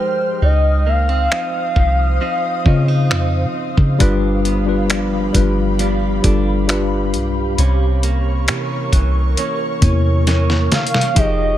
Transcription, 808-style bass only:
0.42 1.28 C#2 loud
1.76 2.19 C2 loud
2.66 3.12 C#3 loud
3.11 3.46 F2 medium
3.44 3.76 C#3 loud
3.78 3.99 C#3 loud
4.00 5.31 G1 loud
5.35 6.20 G1 loud
6.24 7.15 G1 loud
7.14 7.56 B1 loud
7.58 8.50 C2 loud
8.48 8.91 C3 medium
8.93 9.36 C2 loud
9.82 10.68 E2 loud
11.17 11.58 F1 loud

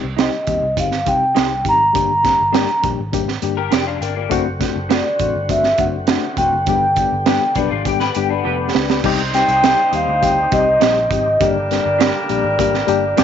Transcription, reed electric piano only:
0.18 0.34 G3 medium
0.18 0.35 C4 medium
0.18 0.35 D#4 medium
0.18 0.35 G4 loud
0.47 0.63 G3 medium
0.47 0.64 C4 medium
0.47 0.64 D#4 medium
0.47 0.64 G4 medium
0.76 0.93 G3 medium
0.76 0.93 C4 medium
0.76 0.93 D#4 medium
0.76 0.94 G4 medium
1.06 1.22 G3 medium
1.06 1.23 C4 medium
1.06 1.23 D#4 medium
1.06 1.23 G4 medium
1.35 1.52 G3 medium
1.35 1.52 C4 medium
1.35 1.52 D#4 medium
1.35 1.53 G4 loud
1.64 1.81 G3 medium
1.64 1.81 C4 medium
1.64 1.82 D#4 medium
1.64 1.82 G4 medium
1.93 2.10 G3 medium
1.93 2.11 A#3 medium
1.93 2.11 D4 medium
1.93 2.11 G4 loud
2.23 2.40 G3 medium
2.23 2.40 A#3 medium
2.23 2.40 D4 medium
2.23 2.41 G4 medium
2.52 2.69 G3 loud
2.52 2.70 A#3 loud
2.52 2.70 D4 loud
2.52 2.70 G4 loud
2.83 2.99 G3 medium
2.83 3.00 A#3 medium
2.83 3.00 D4 medium
2.83 3.00 G4 medium
3.12 3.29 G3 medium
3.12 3.29 A#3 medium
3.12 3.29 D4 medium
3.12 3.30 G4 loud
3.42 3.59 G3 medium
3.42 3.59 A#3 medium
3.42 3.59 D4 medium
3.42 3.59 G4 loud
3.72 3.87 F4 medium
3.72 3.86 D5 medium
3.87 4.01 F5 medium
4.01 4.16 A#4 soft
4.01 4.16 G5 medium
4.17 4.45 F4 medium
4.17 4.45 D5 medium
4.30 4.47 A3 loud
4.30 4.47 C4 loud
4.30 4.47 D4 loud
4.30 4.48 F#4 loud
4.60 4.77 A3 medium
4.60 4.77 C4 medium
4.60 4.77 D4 medium
4.60 4.77 F#4 medium
4.90 5.06 A3 medium
4.90 5.06 C4 medium
4.90 5.07 D4 medium
4.90 5.07 F#4 loud
5.19 5.36 A3 medium
5.19 5.36 C4 medium
5.19 5.36 D4 medium
5.19 5.37 F#4 medium
5.48 5.65 A3 medium
5.48 5.65 C4 medium
5.48 5.66 D4 medium
5.48 5.66 F#4 medium
5.78 5.95 A3 medium
5.78 5.95 C4 medium
5.78 5.95 D4 medium
5.78 5.96 F#4 medium
6.08 6.24 A3 medium
6.08 6.25 C4 medium
6.08 6.25 D4 medium
6.08 6.25 F#4 loud
6.38 6.54 A3 medium
6.38 6.54 C4 medium
6.38 6.55 D4 medium
6.38 6.55 F#4 medium
6.68 6.84 G3 loud
6.68 6.84 B3 medium
6.68 6.84 D4 medium
6.68 6.85 G4 loud
6.98 7.14 G3 medium
6.98 7.14 B3 medium
6.98 7.14 D4 medium
6.98 7.15 G4 medium
7.27 7.43 G3 loud
7.27 7.43 B3 loud
7.27 7.44 D4 medium
7.27 7.44 G4 loud
7.56 7.72 G3 medium
7.56 7.73 B3 medium
7.56 7.73 D4 medium
7.56 7.73 G4 medium
7.86 8.02 G3 medium
7.86 8.02 B3 medium
7.86 8.02 D4 medium
7.86 8.03 G4 loud
8.16 8.32 G3 medium
8.16 8.32 B3 medium
8.16 8.32 D4 medium
8.16 8.32 G4 loud
8.47 8.74 B3 medium
8.47 8.74 G4 medium
8.76 8.89 D4 medium
8.76 8.89 B4 medium
8.91 9.18 B3 medium
8.91 9.05 G4 medium
9.04 9.20 G3 loud
9.04 9.21 C4 loud
9.04 9.21 D#4 loud
9.04 9.21 G4 loud
9.33 9.49 G3 medium
9.33 9.50 C4 medium
9.33 9.50 D#4 medium
9.33 9.50 G4 medium
9.63 9.79 G3 medium
9.63 9.79 C4 medium
9.63 9.79 D#4 medium
9.63 9.80 G4 medium
9.92 10.08 G3 medium
9.92 10.08 C4 medium
9.92 10.09 D#4 medium
9.92 10.09 G4 medium
10.21 10.38 G3 medium
10.21 10.38 C4 medium
10.21 10.38 D#4 medium
10.21 10.39 G4 medium
10.51 10.67 G3 medium
10.51 10.68 C4 medium
10.51 10.68 D#4 medium
10.51 10.68 G4 loud
10.81 10.97 G3 medium
10.81 10.97 C4 medium
10.81 10.98 D#4 medium
10.81 10.98 G4 loud
11.11 11.27 G3 medium
11.11 11.27 C4 medium
11.11 11.27 D#4 medium
11.11 11.28 G4 medium
11.40 11.56 G3 loud
11.40 11.57 A#3 medium
11.40 11.57 D4 medium
11.40 11.57 G4 loud
11.71 11.86 G3 medium
11.71 11.87 A#3 medium
11.71 11.87 D4 medium
11.71 11.87 G4 medium
12.01 12.16 G3 medium
12.01 12.16 A#3 medium
12.01 12.16 D4 medium
12.01 12.17 G4 medium
12.29 12.45 G3 medium
12.29 12.45 A#3 medium
12.29 12.45 D4 medium
12.29 12.46 G4 medium
12.59 12.74 G3 medium
12.59 12.75 A#3 medium
12.59 12.75 D4 medium
12.59 12.75 G4 loud
12.87 13.04 G3 loud
12.87 13.04 A#3 loud
12.87 13.04 D4 loud
12.87 13.04 G4 loud
13.17 13.24 G3 loud
13.17 13.24 A#3 loud
13.17 13.24 D4 loud
13.17 13.24 G4 loud

